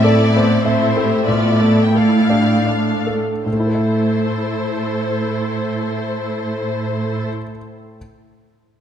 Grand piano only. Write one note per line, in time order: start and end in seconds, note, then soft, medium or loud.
0.00 1.24 A2 medium
0.00 0.23 C4 soft
0.04 0.52 A4 soft
0.37 0.84 C5 soft
0.66 1.14 E5 soft
0.97 1.27 A4 soft
1.28 3.43 A2 soft
1.61 2.16 A3 soft
1.95 2.52 A4 soft
2.30 2.90 D4 soft
2.66 3.30 D5 soft
3.07 3.46 A4 soft
3.46 7.29 A2 soft
3.53 7.36 A3 soft
3.60 7.43 E4 soft
3.67 7.50 A4 soft
3.75 7.58 E5 soft